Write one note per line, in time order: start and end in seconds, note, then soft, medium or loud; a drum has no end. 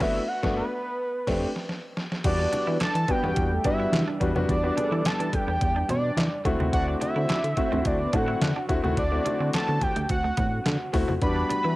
0.00 0.20 G1 loud
0.00 0.20 A3 loud
0.00 0.20 B3 loud
0.00 0.20 D4 medium
0.00 0.20 F#4 loud
0.00 0.29 E5 loud
0.00 kick loud
0.00 snare loud
0.00 crash medium
0.28 0.56 F#5 medium
0.43 0.62 G1 loud
0.43 0.62 A3 loud
0.43 0.62 B3 loud
0.43 0.62 D4 loud
0.43 0.62 F#4 medium
0.43 kick loud
0.43 snare loud
0.57 1.93 B4 medium
1.27 1.46 F1 medium
1.27 1.46 A3 loud
1.27 1.46 C4 loud
1.27 1.46 D4 loud
1.27 1.46 G4 loud
1.27 kick loud
1.27 snare loud
1.27 crash medium
1.56 snare medium
1.69 snare medium
1.97 snare medium
2.12 snare medium
2.24 2.47 E2 loud
2.24 6.41 E3 medium
2.24 2.75 G3 medium
2.24 6.41 G3 medium
2.24 2.75 B3 medium
2.24 2.75 D4 medium
2.24 6.41 D4 medium
2.24 2.47 D4 loud
2.24 2.75 F#4 medium
2.24 2.47 D5 loud
2.24 2.77 D5 loud
2.24 kick loud
2.24 closed hi-hat medium
2.24 crash loud
2.24 muted conga soft
2.39 muted clean electric guitar stroke soft
2.52 2.63 D4 medium
2.52 closed hi-hat medium
2.52 muted conga medium
2.67 2.78 E3 loud
2.67 2.78 B3 medium
2.67 2.76 E4 medium
2.67 2.78 B4 loud
2.80 2.87 E3 soft
2.80 2.93 D4 medium
2.80 2.90 E4 medium
2.80 2.93 D5 loud
2.80 3.12 A5 loud
2.80 snare loud
2.80 clap medium
2.80 closed hi-hat medium
2.80 high conga medium
2.95 3.06 E3 loud
2.95 closed hi-hat medium
3.08 3.17 G3 medium
3.08 3.17 B3 medium
3.08 3.31 B3 loud
3.08 3.18 D4 medium
3.08 3.18 F#4 medium
3.08 3.31 B4 loud
3.08 3.66 G5 loud
3.08 muted clean electric guitar stroke soft
3.08 kick medium
3.08 closed hi-hat medium
3.23 3.34 E2 medium
3.23 3.48 G3 medium
3.23 3.48 B3 medium
3.23 3.33 B3 medium
3.23 3.49 D4 medium
3.23 3.49 F#4 medium
3.23 low conga medium
3.36 3.59 E2 medium
3.36 muted clean electric guitar stroke soft
3.36 kick loud
3.36 closed hi-hat medium
3.52 3.62 A3 medium
3.52 3.62 A4 medium
3.64 3.87 G2 medium
3.64 3.98 G3 medium
3.64 3.77 G3 medium
3.64 3.99 B3 medium
3.64 3.99 D4 medium
3.64 3.75 D4 medium
3.64 3.99 F#4 medium
3.64 3.77 G4 medium
3.64 4.18 E5 medium
3.64 kick medium
3.64 closed hi-hat medium
3.64 muted conga medium
3.80 3.89 E4 medium
3.93 4.05 E3 loud
3.93 snare loud
3.93 clap loud
3.93 closed hi-hat medium
3.93 high conga medium
4.08 4.17 D4 medium
4.20 4.33 E2 medium
4.20 4.29 G3 medium
4.20 4.30 B3 medium
4.20 4.30 D4 medium
4.20 4.30 F#4 medium
4.20 muted clean electric guitar stroke soft
4.20 kick medium
4.20 closed hi-hat medium
4.35 4.46 F2 medium
4.35 4.52 G3 medium
4.35 4.52 B3 medium
4.35 4.45 B3 medium
4.35 4.52 D4 medium
4.35 4.52 F#4 loud
4.35 high conga medium
4.49 4.71 E2 loud
4.49 5.07 D5 loud
4.49 kick loud
4.49 closed hi-hat medium
4.49 muted conga soft
4.63 4.71 G3 medium
4.63 4.71 B3 medium
4.63 4.72 D4 medium
4.63 4.72 F#4 medium
4.63 muted clean electric guitar stroke soft
4.76 5.44 G3 medium
4.76 5.44 B3 medium
4.76 5.44 D4 medium
4.76 4.87 D4 medium
4.76 4.84 G#4 medium
4.76 closed hi-hat medium
4.76 muted conga medium
4.84 5.48 A4 medium
4.92 5.02 E3 loud
4.92 5.01 E4 medium
5.05 5.11 E3 soft
5.05 5.35 A5 loud
5.05 snare loud
5.05 clap loud
5.05 closed hi-hat medium
5.05 high conga medium
5.20 5.30 E3 medium
5.20 5.29 D4 medium
5.20 closed hi-hat medium
5.33 5.90 G5 loud
5.33 muted clean electric guitar stroke soft
5.33 kick medium
5.33 closed hi-hat medium
5.33 low conga medium
5.47 5.58 E2 medium
5.47 5.57 B3 medium
5.61 5.84 E2 loud
5.61 muted clean electric guitar stroke soft
5.61 kick loud
5.61 closed hi-hat medium
5.76 5.85 D4 medium
5.89 6.11 B2 medium
5.89 5.99 B3 medium
5.89 6.42 D5 medium
5.89 closed hi-hat medium
5.89 muted conga soft
5.89 low conga medium
6.17 6.29 E3 loud
6.17 muted clean electric guitar stroke soft
6.17 snare loud
6.17 clap medium
6.17 closed hi-hat medium
6.17 high conga medium
6.45 6.57 D2 loud
6.45 11.18 D3 medium
6.45 7.35 A3 medium
6.45 6.55 A3 medium
6.45 11.18 C4 medium
6.45 7.35 C4 medium
6.45 7.35 E4 medium
6.45 11.18 F#4 medium
6.45 7.35 F#4 medium
6.45 kick medium
6.45 closed hi-hat medium
6.60 6.71 D#2 loud
6.60 6.69 C4 medium
6.60 high conga medium
6.73 6.96 D2 loud
6.73 6.96 D4 loud
6.73 6.96 D5 loud
6.73 6.86 F#5 loud
6.73 kick loud
6.73 closed hi-hat medium
6.88 muted clean electric guitar stroke soft
7.01 7.11 D4 medium
7.01 7.88 E5 loud
7.01 closed hi-hat medium
7.01 muted conga medium
7.16 7.27 D3 loud
7.16 7.27 C4 medium
7.16 7.25 E4 medium
7.16 7.27 C5 loud
7.29 7.35 D3 medium
7.29 7.41 D4 loud
7.29 7.39 E4 medium
7.29 7.41 D5 loud
7.29 snare loud
7.29 clap medium
7.29 closed hi-hat medium
7.29 high conga medium
7.44 7.55 D3 loud
7.44 closed hi-hat medium
7.57 7.66 A3 medium
7.57 7.66 C4 medium
7.57 7.80 C4 loud
7.57 7.66 E4 medium
7.57 7.66 F#4 medium
7.57 7.80 C5 loud
7.57 muted clean electric guitar stroke soft
7.57 kick medium
7.57 closed hi-hat medium
7.71 7.83 D2 medium
7.71 7.97 A3 medium
7.71 7.97 C4 medium
7.71 7.81 C4 medium
7.71 7.97 E4 medium
7.71 7.97 F#4 medium
7.71 low conga medium
7.85 8.08 D2 loud
7.85 8.16 D5 medium
7.85 muted clean electric guitar stroke soft
7.85 kick loud
7.85 closed hi-hat medium
8.00 8.11 B3 medium
8.00 8.11 B4 medium
8.13 8.36 A2 medium
8.13 8.47 A3 medium
8.13 8.25 A3 medium
8.13 8.47 C4 medium
8.13 8.23 D4 medium
8.13 8.47 E4 medium
8.13 8.47 F#4 medium
8.13 8.25 A4 medium
8.13 8.70 F#5 loud
8.13 kick loud
8.13 closed hi-hat medium
8.13 muted conga soft
8.28 8.37 E4 medium
8.41 8.53 D3 loud
8.41 snare loud
8.41 clap loud
8.41 closed hi-hat medium
8.41 high conga medium
8.56 8.65 D4 medium
8.69 8.81 D2 medium
8.69 8.78 A3 medium
8.69 8.78 C4 medium
8.69 8.78 E4 medium
8.69 8.78 F#4 loud
8.69 muted clean electric guitar stroke soft
8.69 kick medium
8.69 closed hi-hat medium
8.83 8.95 D#2 medium
8.83 9.00 A3 medium
8.83 9.00 C4 medium
8.83 8.93 C4 medium
8.83 9.00 E4 medium
8.83 9.00 F#4 loud
8.83 high conga medium
8.97 9.20 D2 loud
8.97 9.50 D5 loud
8.97 kick loud
8.97 closed hi-hat medium
9.12 9.20 A3 medium
9.12 9.20 C4 medium
9.12 9.20 E4 medium
9.12 9.20 F#4 medium
9.12 muted clean electric guitar stroke soft
9.25 9.93 A3 medium
9.25 9.93 C4 medium
9.25 9.35 D4 medium
9.25 9.93 E4 medium
9.25 9.93 F#4 medium
9.25 closed hi-hat medium
9.25 muted conga medium
9.40 9.51 D3 loud
9.40 9.49 C4 medium
9.53 9.60 D3 medium
9.53 9.84 A5 loud
9.53 snare loud
9.53 clap loud
9.53 closed hi-hat medium
9.53 high conga medium
9.68 9.79 D3 loud
9.68 9.77 B3 medium
9.81 10.10 G5 loud
9.81 muted clean electric guitar stroke soft
9.81 kick medium
9.81 closed hi-hat medium
9.81 low conga medium
9.96 10.07 D2 medium
9.96 10.05 A3 medium
9.96 closed hi-hat medium
10.09 10.32 D2 loud
10.09 10.90 F#5 loud
10.09 muted clean electric guitar stroke soft
10.09 kick loud
10.09 closed hi-hat medium
10.24 10.33 A3 medium
10.37 10.60 A2 medium
10.37 10.48 B3 medium
10.37 kick loud
10.37 closed hi-hat medium
10.37 muted conga soft
10.37 low conga medium
10.66 10.78 D3 loud
10.66 muted clean electric guitar stroke soft
10.66 snare loud
10.66 clap loud
10.66 closed hi-hat medium
10.66 high conga medium
10.93 11.06 D2 medium
10.93 11.11 A3 medium
10.93 11.04 B3 medium
10.93 11.11 C4 medium
10.93 11.11 E4 medium
10.93 11.11 F#4 loud
10.93 kick medium
10.93 open hi-hat medium
11.08 11.19 F2 loud
11.08 11.17 A3 medium
11.08 high conga medium
11.21 11.44 E2 loud
11.21 11.76 E3 medium
11.21 11.72 G3 medium
11.21 11.76 G3 medium
11.21 11.72 B3 medium
11.21 11.44 D4 loud
11.21 11.72 D4 medium
11.21 11.76 D4 medium
11.21 11.72 F#4 medium
11.21 11.44 D5 loud
11.21 11.76 B5 loud
11.21 kick loud
11.21 closed hi-hat medium
11.36 muted clean electric guitar stroke soft
11.49 11.60 D4 medium
11.49 closed hi-hat medium
11.49 muted conga medium
11.64 11.75 E3 loud
11.64 11.75 B3 medium
11.64 11.73 E4 medium
11.64 11.75 B4 loud